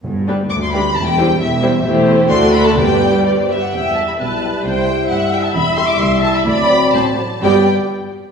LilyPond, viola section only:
\new Staff \with { instrumentName = "Viola section" } { \time 2/4 \key g \major \tempo 4 = 130 r8 <g d'>8 r8 <g d'>8 | r8 <g e'>8 r8 <g e'>8 | <a e'>4 <a fis'>4 | <g g'>4. r8 |
\key e \minor e''4 b'4 | c''4 e''4~ | \key g \major e''2 | d''4 c''8 r8 |
<g g'>8 r4. | }